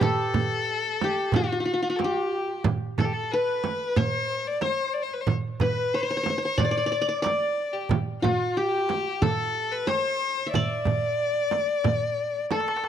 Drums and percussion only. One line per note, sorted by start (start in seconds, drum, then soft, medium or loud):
0.01 frame drum medium
0.01 darbuka dum medium
0.34 darbuka dum medium
0.34 frame drum medium
0.84 darbuka ka soft
1.01 frame drum medium
1.32 darbuka dum medium
1.32 frame drum loud
1.49 darbuka ka soft
1.66 darbuka ka soft
1.83 darbuka ka soft
1.99 darbuka tek medium
1.99 frame drum medium
2.32 darbuka ka soft
2.48 darbuka ka soft
2.64 frame drum loud
2.64 darbuka dum medium
2.98 darbuka dum medium
2.98 frame drum medium
3.32 darbuka ka soft
3.64 darbuka tek medium
3.64 frame drum medium
3.96 frame drum medium
3.96 darbuka dum medium
4.13 darbuka ka soft
4.46 darbuka ka soft
4.61 darbuka tek medium
4.61 frame drum medium
5.11 darbuka ka soft
5.27 darbuka dum loud
5.27 frame drum medium
5.60 darbuka dum medium
5.60 frame drum medium
5.93 darbuka ka soft
6.26 frame drum medium
6.58 darbuka dum medium
6.58 frame drum medium
6.75 darbuka ka soft
7.07 darbuka ka soft
7.24 darbuka tek medium
7.24 frame drum medium
7.74 darbuka ka soft
7.89 darbuka dum medium
7.89 frame drum loud
8.24 darbuka dum medium
8.24 frame drum medium
8.57 darbuka ka soft
8.89 darbuka tek medium
8.89 frame drum medium
9.22 darbuka dum medium
9.22 frame drum loud
9.39 darbuka ka soft
9.72 darbuka ka soft
9.88 darbuka tek medium
9.88 frame drum medium
10.39 darbuka ka soft
10.54 frame drum medium
10.54 darbuka dum medium
10.72 darbuka ka soft
10.85 frame drum medium
10.85 darbuka dum medium
11.04 darbuka ka soft
11.20 darbuka ka soft
11.36 darbuka ka soft
11.51 darbuka tek medium
11.51 frame drum medium
11.84 frame drum medium
11.84 darbuka dum medium
12.02 darbuka ka soft
12.18 darbuka ka soft
12.51 darbuka tek medium
12.51 frame drum medium
12.60 darbuka ka medium
12.68 darbuka tek medium
12.77 darbuka ka medium
12.84 darbuka tek medium